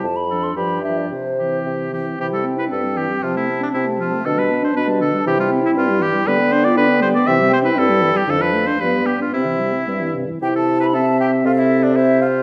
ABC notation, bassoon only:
X:1
M:2/4
L:1/8
Q:1/4=117
K:C
V:1 name="Bassoon" clef=bass
F,,2 G,,2 | C,2 C,2 | C,2 G,,2 | C,2 C,2 |
B,,2 B,,2 | C,2 G,,2 | D,2 D,2 | C,2 G,,2 |
F,,2 G,,2 | C,2 G,,2 | C,4 | C,4 |]